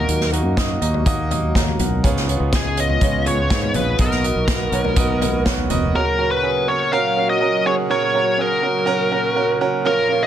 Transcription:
Already playing: A#2 D#3 F#3 A#3 D#4 F#4 A#4 D#5
0.08 D#2, closed hi-hat
0.21 snare
0.32 A#3 D#4 F#4 D#5, closed hi-hat
0.45 F#2
0.57 A#3 D#4 F#4 D#5, kick, snare, closed hi-hat
0.81 D#2 A#3 D#4 F#4 D#5, closed hi-hat
0.94 floor tom
1.06 A#3 D#4 F#4 D#5, kick, closed hi-hat
1.31 A#3 D#4 F#4 D#5, closed hi-hat, floor tom
1.55 C#5 A#5, kick, snare, closed hi-hat
1.68 floor tom
1.79 B1 A#4 F#5, closed hi-hat, floor tom
2.03 C#2 G#2 C#3 G#3 B3 F4 G#4 C#5, kick, closed hi-hat
2.17 snare
2.28 B3 F4 G#4 C#5, closed hi-hat
2.40 C#2
2.53 B3 F4 G#4 D#5, kick, snare, closed hi-hat
2.77 B3 F4 G#4 C#5 D#5, closed hi-hat
2.89 floor tom
3.01 C#2 B3 F4 G#4 C#5, kick, closed hi-hat
3.26 B3 F4 G#4 B4 C#5, closed hi-hat, floor tom
3.50 G#2 B3 F4 G#4 D#5, kick, snare, closed hi-hat
3.63 floor tom
3.74 A#1 B3 F4 G#4 B4 C#5, closed hi-hat, floor tom
3.98 B1 D#3 A#3 B3 F#4 A#4 D#5, kick, closed hi-hat
4.11 snare
4.24 B3 F#4 A#4 D#5, closed hi-hat
4.36 B1
4.48 B3 F#4 A#4 D#5, kick, snare, closed hi-hat
4.72 B1 B3 F#4 A#4 C#5, closed hi-hat
4.84 floor tom
4.96 B3 F#4 A#4 D#5, kick, closed hi-hat
5.21 B3 F#4 A#4 D#5, closed hi-hat, floor tom
5.45 B3 F#4 A#4 C#5, kick, snare, closed hi-hat
5.58 floor tom
5.70 F1 B3 F#4 A#4 D#5, closed hi-hat, floor tom
5.95 A#2 C#3 F#3 C#4 F#4 A#4
6.18 C#4 F#4 A#4
6.31 B4
6.43 C#4 F#4 G#4
6.68 C#4 F#4 A#4 C#5
6.92 C#4 F#4 A#4 F5
7.16 C#4 F#4 A#4
7.30 D#5
7.41 C#4 F#4 A#4
7.65 C#4 F#4 G#4 C#5
7.90 C#3 C#4 F#4 A#4 C#5
8.14 C#4 F#4 A#4
8.38 C#4 F#4 G#4 A#4
8.63 C#4 F#4 A#4
8.86 C#4 F#4 A#4
9.11 C#4 F#4 A#4
9.36 C#4 F#4 A#4
9.61 C#4 F#4 A#4
9.85 F2 F3 C#4 F4 A#4
10.09 C#4 F4 C#5
10.23 D#5

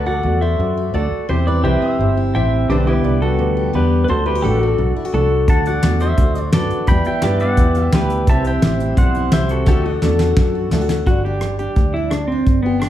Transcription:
Already playing: D2 D3 F#4 A4 B4 D5
0.06 F#4 D5 F#5
0.15 A4
0.23 E2 A3 F#4 A4 D5
0.41 F#4 C5 E5
0.59 F#2 A2 F#4 A4 D5
0.77 F#4
0.94 D2 A3 F#4 A4 D5
1.11 muted fingered electric bass stroke
1.29 E2 C3 C4 E4 G4 C5
1.47 E4 B4 D5
1.63 C2 E3 E4 G4 B4 C5 D5 E5
1.82 C4
1.91 E5
1.99 G1 G2 E4 G4 C5
2.17 E4
2.34 A1 E3 C4 E4 G4 C5 E5 G5
2.68 B1 B2 D3 G3 B3 D4 G4 B4 C5 E5
2.87 B3 E4 G4
2.92 B4
2.97 D5
3.03 C2 D3 D4 G4 B4
3.22 B3 F#4 A4
3.39 D2 B2 D4 G4 B4
3.57 G4
3.73 E2 D3 B3 D4 G4 B4
4.04 D3 B4
4.09 D2 D4 F#4 A4 C5
4.26 E4 G4 B4
4.35 F#4
4.42 A1 A3 D4 F#4 G4 A4 B4 D5
4.62 F#4
4.69 A4
4.78 B1 A2 D4 F#4 A4
4.96 E4
5.05 F#4
5.13 C2 A3 D4 F#4 A4
5.48 D2 D3 D4 F#4 F#5 A5, kick, closed hi-hat
5.65 F#4 D5 F#5, closed hi-hat
5.83 E2 A3 D4 F#4 A4, snare, closed hi-hat
6.00 F#4 C5 E5, closed hi-hat
6.17 D2 A2 D4 F#4 A4, kick, closed hi-hat
6.35 F#4, closed hi-hat
6.52 F#2 A3 D4 F#4 A4 B4 D5, snare, closed hi-hat
6.70 muted fingered electric bass stroke, closed hi-hat
6.87 E2 E3 G3 E4 G4 B4 G5 B5, kick, closed hi-hat
6.91 B3 G4
7.05 G4 E5 G5, muted fingered electric bass stroke, closed hi-hat
7.22 G2 E3 E4 G4 B4 D5, snare, closed hi-hat
7.40 B3 D5 F#5, closed hi-hat
7.50 E5
7.57 E2 B2 E4 G4 B4, kick, closed hi-hat
7.75 G4, closed hi-hat
7.84 E5
7.92 D2 E3 B3 E4 G4 B4, snare, closed hi-hat
8.10 closed hi-hat
8.27 C2 C3 C4 E4 G4 B4 C5 E5 A5, kick, closed hi-hat
8.44 E4 E5 G5, closed hi-hat
8.49 C5
8.62 A1 E3 E4 G4 C5, snare, closed hi-hat
8.80 C4, closed hi-hat
8.97 B1 G2 E4 G4 C5 D5 F#5, kick, closed hi-hat
9.15 E4, closed hi-hat
9.32 C2 E3 C4 E4 G4 C5 E5, snare, closed hi-hat
9.49 F#4 A4, closed hi-hat
9.66 D2 D3 D4 F#4 G4 A4 E5, kick, snare
9.85 F#4
9.94 D5
10.02 E2 A3 D4 F#4 A4, snare
10.19 F#4, snare
10.37 F#2 A2 D4 F#4 A4, kick, snare
10.55 F#4
10.71 D2 A3 D4 E4 F#4 A4, snare
10.81 F#4
10.89 snare
11.06 G1 G2 D3 G3 D4 F#4, kick, closed hi-hat
11.25 D4 G4
11.41 D3, cross-stick, closed hi-hat
11.59 D4 G4, closed hi-hat
11.76 D2 G2, kick, closed hi-hat
11.94 D4 E4
12.11 D3 D4, cross-stick, closed hi-hat
12.28 C4
12.32 D4
12.46 G1 G2, kick, closed hi-hat
12.63 B3 G4
12.80 D3 D4, cross-stick, closed hi-hat

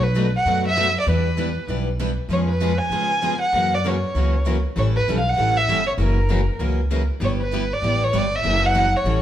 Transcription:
Already playing: B1
0.03 B4
0.14 B2 F#3 A3 D4 F#4 B4
0.36 F#5
0.45 F#2 B2 F#3 A3 D4 F#4 B4
0.68 E5
0.76 B2 F#3 A3 D4 F#4 B4
1.00 D5
1.06 E2 E3 G3 B3 D4 E4 G4 B4
1.10 B4
1.37 E3 G3 B3 D4 E4 G4 B4
1.67 B1 E3 G3 B3 D4 E4 G4 B4
1.99 E3 G3 B3 D4 E4 G4 B4
2.29 F2 F3 G#3 B3 C#4 F4 G#4 B4 C#5
2.49 B4
2.60 F3 G#3 B3 C#4 F4 G#4 B4
2.79 G#5
2.90 C#3 F3 G#3 B3 C#4 F4 G#4 B4
3.22 F3 G#3 B3 C#4 F4 G#4 B4
3.41 F#5
3.52 F#2 C#3 E3 F#3 A#3 C#4 E4 F#4 A#4
3.74 D5
3.84 C#3 E3 F#3 A#3 C#4 E4 F#4 A#4 C#5
4.14 C#2 C#3 E3 F#3 A#3 C#4 E4 F#4 A#4
4.45 C#3 E3 F#3 A#3 C#4 E4 F#4 A#4
4.76 A1 E3 G3 C#4 E4 A4 C#5
4.96 B4
5.08 B1 E3 G3 C#4 E4 A4
5.18 F5
5.29 F#5
5.38 A1 E3 G3 C#4 E4 A4
5.58 E5
5.67 G1 E3 G3 C#4 E4 A4
5.87 C#5
5.98 F#1 C#3 E3 F#3 A#3 C#4 E4 F#4 A#4
6.02 A#4
6.29 C#3 E3 F#3 A#3 C#4 E4 F#4 A#4
6.59 C#2 C#3 E3 F#3 A#3 C#4 E4 F#4 A#4
6.91 C#3 E3 F#3 A#3 C#4 E4 F#4 A#4
7.20 G1 G3 B3 E4 G4
7.24 C#5
7.41 B4
7.51 G3 B3 E4 G4
7.73 D5
7.82 A1 G3 B3 E4 G4
8.04 C#5
8.13 G1 G3 B3 E4 G4
8.18 D5
8.36 E5
8.43 F#1 C#3 E3 F#3 A#3 C#4 E4 F#4 A#4
8.66 F#5
8.74 C#3 E3 F#3 A#3 C#4 E4 F#4 A#4
8.96 C#5
9.04 A1 E3 G3 C#4 E4 A4

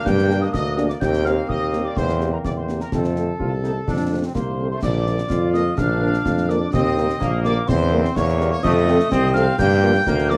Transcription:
Already playing: A#3 D4
0.05 G2 G5 G6, concert bass drum, snare
0.18 snare
0.29 A#3 D4 G4, snare
0.41 D#5 D#6
0.53 D2 D#5 D#6, concert bass drum, snare
0.77 A#3 D4 G4, snare
0.89 D5 D6, snare
1.00 D#2 A#3 C4 G5 G6, concert bass drum, snare, crash
1.13 snare
1.24 A#3 C4 G4 F5 F6, snare
1.48 D#2 D#5 D#6, concert bass drum
1.73 A#3 C4 G4, snare
1.84 D5 D6
1.96 E2 C5 C6, concert bass drum, snare
2.09 snare
2.20 A#3 C4 G4, snare
2.33 A#4 A#5
2.44 E2 D5 D6, concert bass drum, snare
2.57 C5 C6
2.68 A#3 C4 G4, snare
2.80 A#4 A#5, snare
2.92 F2 A3 C4 A4 A5, concert bass drum, snare, crash
3.04 snare
3.16 A3 C4 A4, snare
3.39 C2 F4, concert bass drum
3.62 A3 C4 D#4 A4, snare
3.87 F2 D4, concert bass drum, snare
4.12 A3 C4 A4
4.24 C4
4.34 C2 A#3 C5 C6, concert bass drum, snare
4.59 A3 C4 A4
4.70 A3 C5 C6
4.82 A#1 D5 D6, concert bass drum, snare, crash
5.06 F3 A#3 A#4, snare
5.18 snare
5.29 F2 F4, concert bass drum, snare
5.53 F3 A#3 A#4 D#5 D#6, snare
5.77 A#1 D4 F5 F6, concert bass drum, snare
6.00 F3 A#3 A#4
6.14 snare
6.25 F2, concert bass drum, snare
6.37 snare
6.49 F3 A#3 A#4 D5 D6, snare
6.72 D#2 C4 D#5 D#6, concert bass drum, snare, crash
6.97 G3 A#3 A#4, snare
7.10 snare
7.20 A#1 A#3, concert bass drum, snare
7.44 G3 A#3 A#4 D5 D6, snare
7.67 E2 C4 C5 C6, concert bass drum, snare
7.92 G3 A#3 A#4
8.05 snare
8.15 E2 A#3 C#5 C#6, concert bass drum, snare
8.28 snare
8.40 G3 A#3 A#4, snare
8.51 C#5 C#6
8.63 F2 A3 D#5 D#6, concert bass drum, snare, crash
8.88 F3 C4 A4, snare
9.00 snare
9.11 C2 C4, concert bass drum, snare
9.34 F3 C4 A4 F5 F6, snare
9.58 G2 A#3 G5 G6, concert bass drum, snare
9.83 F3 A#3 A#4
9.95 snare
10.06 D2 A#3, concert bass drum, snare
10.18 snare
10.30 F3 A#3 A#4 D5 D6, snare

